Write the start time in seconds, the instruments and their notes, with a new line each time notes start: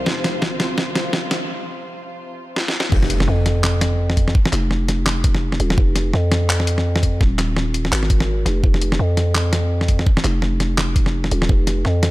Already playing: string section C3 F3 F4 C5
0.06 808-style bass F1, kick, snare
0.24 snare, closed hi-hat
0.42 808-style bass G#1, kick, snare
0.60 snare, closed hi-hat
0.78 kick, snare
0.95 snare, closed hi-hat
1.13 kick, snare
1.31 snare, closed hi-hat
2.56 snare
2.68 snare
2.80 snare
2.92 808-style bass F1, kick, crash, impact
3.03 snare
3.10 closed hi-hat
3.20 snare
3.28 808-style bass F2
3.46 snare, closed hi-hat
3.64 clap, snare
3.81 snare, closed hi-hat
4.10 snare
4.17 kick, closed hi-hat
4.28 snare
4.35 kick
4.46 snare
4.53 808-style bass F1, clap, closed hi-hat
4.71 snare
4.88 snare, closed hi-hat
5.06 clap, snare
5.24 kick, closed hi-hat
5.35 snare
5.52 snare
5.60 808-style bass D#1, closed hi-hat
5.70 snare
5.78 808-style bass F1, kick
5.96 snare, closed hi-hat
6.14 808-style bass F2, snare
6.32 snare, closed hi-hat
6.49 clap
6.60 snare
6.67 closed hi-hat
6.78 snare
6.96 snare
7.03 kick, closed hi-hat
7.21 808-style bass D#1, kick, snare
7.39 clap, snare, closed hi-hat
7.56 snare
7.74 closed hi-hat
7.85 snare
7.92 808-style bass G#1, clap
8.03 snare
8.10 kick, closed hi-hat
8.20 snare
8.46 808-style bass F1, snare, closed hi-hat
8.64 808-style bass F1, kick
8.74 snare
8.81 closed hi-hat
8.92 snare
8.99 808-style bass F2
9.17 snare, closed hi-hat
9.35 clap, snare
9.53 snare, closed hi-hat
9.81 snare
9.88 kick, closed hi-hat
9.99 snare
10.07 kick
10.17 snare
10.24 808-style bass F1, clap, closed hi-hat
10.42 snare
10.60 snare, closed hi-hat
10.78 clap, snare
10.96 kick, closed hi-hat
11.06 snare
11.24 snare
11.31 808-style bass D#1, closed hi-hat
11.42 snare
11.49 808-style bass F1, kick
11.67 snare, closed hi-hat
11.85 808-style bass F2, snare
12.03 snare, closed hi-hat